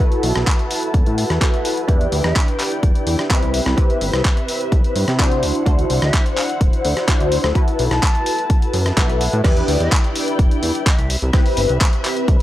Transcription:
Already playing: E4
0.00 E4 F#4 A4 B4 A5
0.12 closed hi-hat
0.23 B1, open hi-hat
0.36 B1, cross-stick, closed hi-hat
0.47 kick, clap, closed hi-hat
0.59 closed hi-hat
0.71 open hi-hat
0.83 closed hi-hat
0.94 E2, kick, closed hi-hat
1.06 A2, closed hi-hat
1.18 open hi-hat
1.30 E2, cross-stick, closed hi-hat
1.41 E4 F#4 A4 B4, kick, clap, closed hi-hat
1.54 closed hi-hat
1.65 open hi-hat
1.77 closed hi-hat
1.88 E2 D4 E4 G4 B4 D5 G5, kick, closed hi-hat
2.01 closed hi-hat
2.12 D2, open hi-hat
2.24 E2 E5, cross-stick, closed hi-hat
2.36 kick, clap, closed hi-hat
2.48 closed hi-hat
2.59 clap, open hi-hat
2.72 closed hi-hat
2.83 E1, kick, closed hi-hat
2.95 closed hi-hat
3.07 E2, open hi-hat
3.19 cross-stick, closed hi-hat
3.29 C4 E4 G4 B4 E5, kick, clap, closed hi-hat
3.43 C2, closed hi-hat
3.54 C4 B4 E5, open hi-hat
3.66 C2, cross-stick, closed hi-hat
3.77 C4 E4 G4 B4, kick, closed hi-hat
3.90 closed hi-hat
4.01 G1, open hi-hat
4.13 C2, cross-stick, closed hi-hat
4.25 kick, clap, closed hi-hat
4.37 closed hi-hat
4.48 open hi-hat
4.61 closed hi-hat
4.72 C2, kick, closed hi-hat
4.84 closed hi-hat
4.96 G2, open hi-hat
5.08 C3, cross-stick, closed hi-hat
5.19 D4 E4 F#4 C5, kick, clap, closed hi-hat
5.32 closed hi-hat
5.42 D2 E4 C5 F#5, open hi-hat
5.55 closed hi-hat
5.66 D2 D4 E4 F#4 C5, kick, closed hi-hat
5.79 closed hi-hat
5.90 C2, open hi-hat
6.02 D2 E5, cross-stick, closed hi-hat
6.14 kick, clap, closed hi-hat
6.26 closed hi-hat
6.37 F#5, clap, open hi-hat
6.49 closed hi-hat
6.61 D1, kick, closed hi-hat
6.73 closed hi-hat
6.85 D2, open hi-hat
6.97 cross-stick, closed hi-hat
7.08 D4 E4 F#4 C5, kick, clap, closed hi-hat
7.20 D2, closed hi-hat
7.32 open hi-hat
7.44 D2, cross-stick, closed hi-hat
7.55 E4 F#4 A4 B4 A5, kick, closed hi-hat
7.68 closed hi-hat
7.79 B1, open hi-hat
7.91 B1 A5, cross-stick, closed hi-hat
8.03 kick, clap, closed hi-hat
8.15 closed hi-hat
8.26 open hi-hat
8.39 closed hi-hat
8.50 kick, closed hi-hat
8.62 closed hi-hat
8.73 F#2, open hi-hat
8.86 cross-stick, closed hi-hat
8.97 B1 E4 F#4 A4 B4, kick, clap, closed hi-hat
9.10 closed hi-hat
9.21 open hi-hat
9.33 A2, closed hi-hat
9.44 E2 D4 E4 G4 B4 D5 G5, kick, cross-stick, closed hi-hat, crash
9.57 closed hi-hat
9.68 D2, open hi-hat
9.80 E2 E5, closed hi-hat
9.92 kick, clap, closed hi-hat
10.04 closed hi-hat
10.16 open hi-hat
10.28 closed hi-hat
10.39 E1, kick, closed hi-hat
10.51 closed hi-hat
10.62 E2, open hi-hat
10.75 closed hi-hat
10.86 E5, kick, clap, closed hi-hat
10.99 C2, closed hi-hat
11.10 C4 B4 E5, open hi-hat
11.22 C2, closed hi-hat
11.33 C4 E4 G4 B4, kick, cross-stick, closed hi-hat
11.46 open hi-hat
11.57 G1, open hi-hat
11.69 C2, closed hi-hat
11.81 kick, clap, closed hi-hat
11.93 closed hi-hat
12.04 clap, open hi-hat
12.17 closed hi-hat
12.28 C2, kick, closed hi-hat

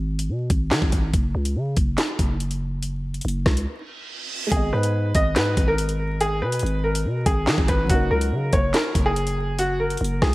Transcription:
Already playing: G#1
0.19 closed hi-hat
0.29 B2
0.50 G#1, kick, closed hi-hat
0.71 D#3, snare, clap
0.82 G#1, kick
0.92 G#1, kick, closed hi-hat
1.13 F#1, kick, closed hi-hat
1.35 C#2
1.45 closed hi-hat
1.56 C#3
1.77 F#1, kick, closed hi-hat
1.98 snare, clap, closed hi-hat
2.19 F#1, kick, closed hi-hat
2.40 closed hi-hat
2.51 closed hi-hat
2.83 closed hi-hat
3.14 closed hi-hat
3.21 F#1, closed hi-hat
3.28 closed hi-hat
3.46 C#2, kick, cross-stick, snare
3.57 closed hi-hat
3.67 reverse cymbal
4.47 G#3 G#4
4.51 G#1 B3 G#4, kick, closed hi-hat
4.56 D#5
4.73 G#2 B4
4.83 closed hi-hat
5.15 G#1 D#5, kick, closed hi-hat
5.36 G#2 B4, snare, clap, closed hi-hat
5.57 G#1, kick, closed hi-hat
5.68 A#4
5.78 closed hi-hat
5.89 closed hi-hat
6.21 G#4, closed hi-hat
6.42 B2 B4
6.52 closed hi-hat
6.59 G#1, closed hi-hat
6.66 closed hi-hat
6.84 A#4
6.95 closed hi-hat
7.05 B2
7.26 G#1 G#4, kick, closed hi-hat
7.47 D#3, snare, clap
7.58 G#1, kick
7.68 G#1 B4, kick, closed hi-hat
7.84 F#3 C#4
7.90 F#1 D#4 F#4, kick, closed hi-hat
7.94 A#4
8.11 C#2 A#4
8.21 closed hi-hat
8.32 C#3
8.53 F#1 C#5, kick, closed hi-hat
8.74 A#4, snare, clap, closed hi-hat
8.95 F#1, kick, closed hi-hat
9.06 G#4
9.16 closed hi-hat
9.27 closed hi-hat
9.59 F#4, closed hi-hat
9.80 A#4
9.90 closed hi-hat
9.97 F#1, closed hi-hat
10.04 closed hi-hat
10.22 C#2 G#4, kick, cross-stick, snare

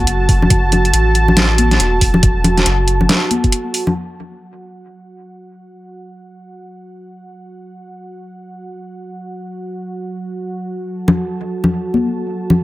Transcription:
Already playing: F#4 A5
0.07 F#1, closed hi-hat
0.29 kick, open hi-hat
0.42 low conga
0.50 F#1, kick, closed hi-hat
0.72 closed hi-hat, low conga
0.85 closed hi-hat
0.93 A1, closed hi-hat
1.15 closed hi-hat
1.28 low conga
1.37 snare, closed hi-hat
1.58 closed hi-hat, high conga
1.71 snare, closed hi-hat
1.79 E1, closed hi-hat
2.01 kick, open hi-hat
2.14 low conga
2.23 kick, closed hi-hat
2.44 closed hi-hat, low conga
2.57 snare, closed hi-hat
2.66 F#1, closed hi-hat
2.88 closed hi-hat
3.01 low conga
3.09 snare, closed hi-hat
3.31 closed hi-hat, high conga
3.44 kick, closed hi-hat
3.52 closed hi-hat
3.74 open hi-hat
3.87 low conga
3.96 F#4 F#5
10.86 A5
11.08 low conga
11.64 low conga
11.94 high conga
12.50 low conga

